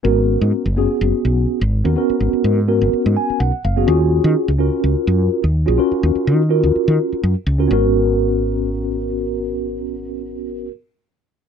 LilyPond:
<<
  \new Staff \with { instrumentName = "Tine electric piano" } { \time 4/4 \key gis \dorian \tempo 4 = 125 << { r1 | r2 r8 gis''8 fis''8 eis''8 | r1 | r1 |
r1 | r1 | } \\ { <b cis' fis' ais'>4~ <b cis' fis' ais'>16 r16 <b cis' fis' gis'>4.~ <b cis' fis' gis'>16 r8 <b cis' fis' ais'>16 | <b cis' fis' ais'>4~ <b cis' fis' ais'>16 r16 <b cis' fis' ais'>4.~ <b cis' fis' ais'>16 r8 <b cis' fis' gis'>16 | <cis' eis' fis' gis'>4~ <cis' eis' fis' gis'>16 r16 <cis' eis' fis' ais'>4.~ <cis' eis' fis' ais'>16 r8 <cis' eis' fis' gis'>16 | <cis' eis' fis' ais'>4~ <cis' eis' fis' ais'>16 r16 <cis' eis' fis' ais'>4.~ <cis' eis' fis' ais'>16 r8 <cis' eis' fis' ais'>16 |
<b cis' fis' ais'>1~ | <b cis' fis' ais'>1 | } >> }
  \new Staff \with { instrumentName = "Fretless electric bass" } { \clef bass \time 4/4 \key gis \dorian gis,,8. gis,16 r16 fis,,8 r16 fis,,16 r16 b,,8 r16 gis,,8 dis,16 | r8 gis,,16 r16 gis,8. gis,,16 r16 gis,16 r8 b,,16 r16 fis,,8 | dis,8. dis16 r16 cis,8 r16 cis,16 r16 fis,8 r16 dis,8 ais,,16 | r8 dis,16 r16 dis8. dis,16 r16 dis16 r8 fis,16 r16 cis,8 |
gis,,1~ | gis,,1 | }
>>